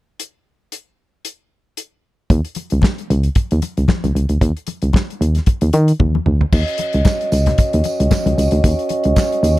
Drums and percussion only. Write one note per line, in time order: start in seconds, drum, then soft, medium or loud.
0.20 closed hi-hat medium
0.72 closed hi-hat medium
1.25 closed hi-hat medium
1.77 closed hi-hat medium
2.30 kick loud
2.30 closed hi-hat medium
2.30 muted conga soft
2.45 closed hi-hat soft
2.55 closed hi-hat medium
2.55 muted conga soft
2.70 closed hi-hat soft
2.82 kick loud
2.82 snare loud
2.82 clap medium
2.82 high conga medium
2.98 closed hi-hat soft
3.10 closed hi-hat medium
3.23 closed hi-hat soft
3.35 kick loud
3.35 closed hi-hat medium
3.35 muted conga soft
3.51 closed hi-hat soft
3.62 closed hi-hat medium
3.62 muted conga soft
3.77 closed hi-hat soft
3.88 kick loud
3.88 snare loud
3.88 clap medium
3.88 high conga medium
4.04 closed hi-hat soft
4.04 high conga medium
4.16 closed hi-hat medium
4.29 closed hi-hat soft
4.41 kick loud
4.41 closed hi-hat medium
4.41 muted conga soft
4.57 closed hi-hat soft
4.67 closed hi-hat medium
4.67 muted conga soft
4.82 closed hi-hat soft
4.93 kick loud
4.93 snare loud
4.93 clap medium
4.93 high conga medium
5.10 closed hi-hat soft
5.22 closed hi-hat medium
5.35 snare soft
5.35 closed hi-hat soft
5.46 kick loud
5.46 closed hi-hat medium
5.46 muted conga medium
5.61 closed hi-hat medium
5.73 closed hi-hat medium
5.73 muted conga medium
5.88 closed hi-hat medium
6.00 kick loud
6.00 high tom medium
6.00 high conga medium
6.15 high conga medium
6.26 mid tom medium
6.41 floor tom medium
6.52 kick loud
6.52 crash medium
6.52 tambourine medium
6.52 muted conga soft
6.68 closed hi-hat soft
6.78 closed hi-hat medium
6.78 muted conga soft
6.93 closed hi-hat soft
7.05 kick loud
7.05 snare loud
7.05 clap medium
7.05 tambourine medium
7.05 high conga medium
7.21 closed hi-hat soft
7.32 closed hi-hat medium
7.32 tambourine medium
7.46 snare soft
7.46 closed hi-hat soft
7.46 low conga medium
7.58 kick loud
7.58 closed hi-hat medium
7.58 tambourine soft
7.58 muted conga soft
7.73 closed hi-hat medium
7.84 closed hi-hat medium
7.84 tambourine medium
7.84 muted conga medium
8.00 closed hi-hat medium
8.11 kick loud
8.11 snare loud
8.11 clap medium
8.11 tambourine medium
8.11 high conga medium
8.26 closed hi-hat soft
8.26 high conga medium
8.38 closed hi-hat medium
8.38 tambourine medium
8.51 closed hi-hat soft
8.64 kick loud
8.64 closed hi-hat medium
8.64 tambourine medium
8.64 muted conga soft
8.79 closed hi-hat soft
8.89 closed hi-hat medium
8.89 muted conga soft
9.04 closed hi-hat soft
9.16 kick loud
9.16 snare loud
9.16 clap medium
9.16 tambourine medium
9.16 high conga medium
9.32 closed hi-hat soft
9.44 closed hi-hat medium
9.44 tambourine medium